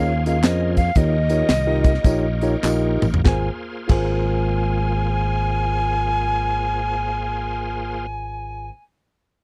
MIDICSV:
0, 0, Header, 1, 6, 480
1, 0, Start_track
1, 0, Key_signature, -4, "major"
1, 0, Tempo, 515907
1, 895, Time_signature, 4, 2, 24, 8
1, 1391, Tempo, 570342
1, 2351, Tempo, 636943
1, 7478, End_track
2, 0, Start_track
2, 0, Title_t, "Recorder"
2, 0, Program_c, 0, 74
2, 0, Note_on_c, 0, 77, 108
2, 247, Note_off_c, 0, 77, 0
2, 253, Note_on_c, 0, 77, 96
2, 419, Note_on_c, 0, 75, 100
2, 433, Note_off_c, 0, 77, 0
2, 706, Note_off_c, 0, 75, 0
2, 711, Note_on_c, 0, 77, 112
2, 904, Note_on_c, 0, 75, 102
2, 918, Note_off_c, 0, 77, 0
2, 2354, Note_off_c, 0, 75, 0
2, 2827, Note_on_c, 0, 80, 80
2, 2995, Note_off_c, 0, 80, 0
2, 3306, Note_on_c, 0, 80, 99
2, 6922, Note_off_c, 0, 80, 0
2, 7478, End_track
3, 0, Start_track
3, 0, Title_t, "Tine electric piano"
3, 0, Program_c, 1, 4
3, 0, Note_on_c, 1, 61, 71
3, 0, Note_on_c, 1, 65, 72
3, 0, Note_on_c, 1, 68, 70
3, 0, Note_on_c, 1, 70, 65
3, 0, Note_on_c, 1, 73, 83
3, 108, Note_off_c, 1, 61, 0
3, 108, Note_off_c, 1, 65, 0
3, 111, Note_off_c, 1, 68, 0
3, 111, Note_off_c, 1, 70, 0
3, 111, Note_off_c, 1, 73, 0
3, 243, Note_on_c, 1, 61, 70
3, 244, Note_on_c, 1, 65, 77
3, 248, Note_on_c, 1, 68, 74
3, 251, Note_on_c, 1, 70, 74
3, 252, Note_on_c, 1, 75, 83
3, 337, Note_off_c, 1, 61, 0
3, 337, Note_off_c, 1, 65, 0
3, 339, Note_off_c, 1, 68, 0
3, 341, Note_off_c, 1, 70, 0
3, 341, Note_off_c, 1, 75, 0
3, 409, Note_on_c, 1, 61, 67
3, 412, Note_on_c, 1, 68, 68
3, 414, Note_on_c, 1, 65, 71
3, 416, Note_on_c, 1, 72, 85
3, 417, Note_on_c, 1, 70, 69
3, 732, Note_off_c, 1, 61, 0
3, 734, Note_off_c, 1, 65, 0
3, 734, Note_off_c, 1, 68, 0
3, 736, Note_off_c, 1, 70, 0
3, 736, Note_off_c, 1, 72, 0
3, 896, Note_on_c, 1, 63, 69
3, 898, Note_on_c, 1, 65, 66
3, 898, Note_on_c, 1, 67, 63
3, 898, Note_on_c, 1, 70, 67
3, 899, Note_on_c, 1, 51, 62
3, 902, Note_on_c, 1, 73, 76
3, 1065, Note_off_c, 1, 63, 0
3, 1066, Note_off_c, 1, 67, 0
3, 1066, Note_off_c, 1, 70, 0
3, 1067, Note_off_c, 1, 65, 0
3, 1068, Note_off_c, 1, 73, 0
3, 1208, Note_on_c, 1, 65, 68
3, 1210, Note_on_c, 1, 70, 74
3, 1211, Note_on_c, 1, 63, 72
3, 1214, Note_on_c, 1, 67, 66
3, 1219, Note_on_c, 1, 73, 85
3, 1356, Note_off_c, 1, 65, 0
3, 1357, Note_off_c, 1, 63, 0
3, 1357, Note_off_c, 1, 70, 0
3, 1359, Note_off_c, 1, 67, 0
3, 1361, Note_off_c, 1, 73, 0
3, 1538, Note_on_c, 1, 67, 89
3, 1539, Note_on_c, 1, 65, 79
3, 1541, Note_on_c, 1, 63, 92
3, 1542, Note_on_c, 1, 70, 81
3, 1543, Note_on_c, 1, 75, 98
3, 1656, Note_off_c, 1, 51, 0
3, 1741, Note_off_c, 1, 67, 0
3, 1742, Note_off_c, 1, 65, 0
3, 1743, Note_off_c, 1, 63, 0
3, 1743, Note_off_c, 1, 70, 0
3, 1743, Note_off_c, 1, 75, 0
3, 1860, Note_on_c, 1, 63, 92
3, 1863, Note_on_c, 1, 70, 77
3, 1864, Note_on_c, 1, 65, 86
3, 1864, Note_on_c, 1, 67, 85
3, 1865, Note_on_c, 1, 73, 91
3, 2027, Note_off_c, 1, 63, 0
3, 2029, Note_off_c, 1, 65, 0
3, 2029, Note_off_c, 1, 67, 0
3, 2029, Note_off_c, 1, 70, 0
3, 2030, Note_off_c, 1, 73, 0
3, 2173, Note_on_c, 1, 65, 87
3, 2174, Note_on_c, 1, 63, 87
3, 2176, Note_on_c, 1, 67, 78
3, 2178, Note_on_c, 1, 70, 81
3, 2180, Note_on_c, 1, 73, 97
3, 2269, Note_off_c, 1, 65, 0
3, 2270, Note_off_c, 1, 63, 0
3, 2270, Note_off_c, 1, 67, 0
3, 2271, Note_off_c, 1, 70, 0
3, 2272, Note_off_c, 1, 73, 0
3, 2357, Note_on_c, 1, 63, 83
3, 2359, Note_on_c, 1, 65, 83
3, 2359, Note_on_c, 1, 67, 76
3, 2362, Note_on_c, 1, 70, 79
3, 2362, Note_on_c, 1, 75, 96
3, 2664, Note_off_c, 1, 63, 0
3, 2665, Note_off_c, 1, 65, 0
3, 2665, Note_off_c, 1, 67, 0
3, 2666, Note_off_c, 1, 70, 0
3, 2666, Note_off_c, 1, 75, 0
3, 2807, Note_on_c, 1, 65, 83
3, 2814, Note_on_c, 1, 68, 72
3, 2821, Note_on_c, 1, 32, 78
3, 2827, Note_on_c, 1, 70, 69
3, 2838, Note_on_c, 1, 72, 87
3, 2984, Note_off_c, 1, 65, 0
3, 2988, Note_off_c, 1, 68, 0
3, 2992, Note_off_c, 1, 32, 0
3, 2995, Note_off_c, 1, 70, 0
3, 3001, Note_off_c, 1, 72, 0
3, 3285, Note_on_c, 1, 65, 87
3, 3292, Note_on_c, 1, 68, 74
3, 3300, Note_on_c, 1, 32, 88
3, 3303, Note_on_c, 1, 70, 74
3, 3314, Note_on_c, 1, 72, 90
3, 6900, Note_off_c, 1, 65, 0
3, 6908, Note_off_c, 1, 68, 0
3, 6915, Note_off_c, 1, 32, 0
3, 6919, Note_off_c, 1, 70, 0
3, 6929, Note_off_c, 1, 72, 0
3, 7478, End_track
4, 0, Start_track
4, 0, Title_t, "Tonewheel organ"
4, 0, Program_c, 2, 16
4, 0, Note_on_c, 2, 58, 67
4, 0, Note_on_c, 2, 61, 60
4, 0, Note_on_c, 2, 65, 64
4, 0, Note_on_c, 2, 68, 67
4, 0, Note_on_c, 2, 72, 76
4, 853, Note_off_c, 2, 68, 0
4, 855, Note_off_c, 2, 58, 0
4, 856, Note_off_c, 2, 65, 0
4, 857, Note_off_c, 2, 61, 0
4, 857, Note_off_c, 2, 72, 0
4, 898, Note_on_c, 2, 67, 62
4, 899, Note_on_c, 2, 65, 66
4, 902, Note_on_c, 2, 73, 73
4, 903, Note_on_c, 2, 58, 67
4, 904, Note_on_c, 2, 63, 62
4, 2789, Note_off_c, 2, 65, 0
4, 2789, Note_off_c, 2, 67, 0
4, 2790, Note_off_c, 2, 73, 0
4, 2791, Note_off_c, 2, 58, 0
4, 2791, Note_off_c, 2, 63, 0
4, 2823, Note_on_c, 2, 68, 77
4, 2825, Note_on_c, 2, 65, 70
4, 2828, Note_on_c, 2, 58, 77
4, 2828, Note_on_c, 2, 72, 87
4, 6439, Note_off_c, 2, 68, 0
4, 6440, Note_off_c, 2, 65, 0
4, 6444, Note_off_c, 2, 58, 0
4, 6444, Note_off_c, 2, 72, 0
4, 7478, End_track
5, 0, Start_track
5, 0, Title_t, "Fingered electric bass"
5, 0, Program_c, 3, 33
5, 0, Note_on_c, 3, 39, 102
5, 412, Note_off_c, 3, 39, 0
5, 412, Note_on_c, 3, 41, 86
5, 821, Note_off_c, 3, 41, 0
5, 896, Note_on_c, 3, 39, 98
5, 1317, Note_off_c, 3, 39, 0
5, 1389, Note_on_c, 3, 36, 94
5, 1788, Note_off_c, 3, 36, 0
5, 1852, Note_on_c, 3, 34, 95
5, 2273, Note_off_c, 3, 34, 0
5, 2349, Note_on_c, 3, 34, 85
5, 2601, Note_off_c, 3, 34, 0
5, 2644, Note_on_c, 3, 33, 85
5, 2791, Note_off_c, 3, 33, 0
5, 2815, Note_on_c, 3, 32, 90
5, 2988, Note_off_c, 3, 32, 0
5, 3299, Note_on_c, 3, 32, 105
5, 6914, Note_off_c, 3, 32, 0
5, 7478, End_track
6, 0, Start_track
6, 0, Title_t, "Drums"
6, 243, Note_on_c, 9, 42, 67
6, 244, Note_on_c, 9, 54, 54
6, 336, Note_off_c, 9, 42, 0
6, 337, Note_off_c, 9, 54, 0
6, 407, Note_on_c, 9, 38, 98
6, 407, Note_on_c, 9, 39, 107
6, 407, Note_on_c, 9, 54, 100
6, 414, Note_on_c, 9, 42, 96
6, 500, Note_off_c, 9, 38, 0
6, 500, Note_off_c, 9, 39, 0
6, 500, Note_off_c, 9, 54, 0
6, 507, Note_off_c, 9, 42, 0
6, 714, Note_on_c, 9, 42, 62
6, 716, Note_on_c, 9, 54, 57
6, 718, Note_on_c, 9, 36, 81
6, 807, Note_off_c, 9, 42, 0
6, 809, Note_off_c, 9, 54, 0
6, 811, Note_off_c, 9, 36, 0
6, 886, Note_on_c, 9, 54, 74
6, 890, Note_on_c, 9, 42, 102
6, 892, Note_on_c, 9, 36, 113
6, 979, Note_off_c, 9, 54, 0
6, 983, Note_off_c, 9, 42, 0
6, 985, Note_off_c, 9, 36, 0
6, 1205, Note_on_c, 9, 42, 81
6, 1207, Note_on_c, 9, 54, 64
6, 1298, Note_off_c, 9, 42, 0
6, 1300, Note_off_c, 9, 54, 0
6, 1384, Note_on_c, 9, 38, 103
6, 1387, Note_on_c, 9, 42, 86
6, 1394, Note_on_c, 9, 39, 93
6, 1394, Note_on_c, 9, 54, 95
6, 1469, Note_off_c, 9, 38, 0
6, 1472, Note_off_c, 9, 42, 0
6, 1479, Note_off_c, 9, 39, 0
6, 1479, Note_off_c, 9, 54, 0
6, 1684, Note_on_c, 9, 42, 74
6, 1685, Note_on_c, 9, 36, 106
6, 1690, Note_on_c, 9, 54, 53
6, 1767, Note_on_c, 9, 38, 36
6, 1768, Note_off_c, 9, 42, 0
6, 1770, Note_off_c, 9, 36, 0
6, 1775, Note_off_c, 9, 54, 0
6, 1851, Note_off_c, 9, 38, 0
6, 1853, Note_on_c, 9, 36, 107
6, 1853, Note_on_c, 9, 42, 91
6, 1865, Note_on_c, 9, 54, 77
6, 1937, Note_off_c, 9, 42, 0
6, 1938, Note_off_c, 9, 36, 0
6, 1949, Note_off_c, 9, 54, 0
6, 2165, Note_on_c, 9, 42, 66
6, 2182, Note_on_c, 9, 54, 52
6, 2249, Note_off_c, 9, 42, 0
6, 2266, Note_off_c, 9, 54, 0
6, 2345, Note_on_c, 9, 38, 53
6, 2354, Note_on_c, 9, 39, 98
6, 2354, Note_on_c, 9, 54, 105
6, 2421, Note_off_c, 9, 38, 0
6, 2430, Note_off_c, 9, 39, 0
6, 2430, Note_off_c, 9, 54, 0
6, 2641, Note_on_c, 9, 45, 89
6, 2647, Note_on_c, 9, 54, 57
6, 2717, Note_off_c, 9, 45, 0
6, 2722, Note_off_c, 9, 54, 0
6, 2729, Note_on_c, 9, 43, 98
6, 2804, Note_off_c, 9, 43, 0
6, 2814, Note_on_c, 9, 38, 88
6, 2817, Note_on_c, 9, 39, 69
6, 2818, Note_on_c, 9, 36, 112
6, 2890, Note_off_c, 9, 38, 0
6, 2892, Note_off_c, 9, 39, 0
6, 2893, Note_off_c, 9, 36, 0
6, 3297, Note_on_c, 9, 49, 82
6, 3300, Note_on_c, 9, 36, 99
6, 3304, Note_on_c, 9, 39, 85
6, 3372, Note_off_c, 9, 49, 0
6, 3375, Note_off_c, 9, 36, 0
6, 3379, Note_off_c, 9, 39, 0
6, 7478, End_track
0, 0, End_of_file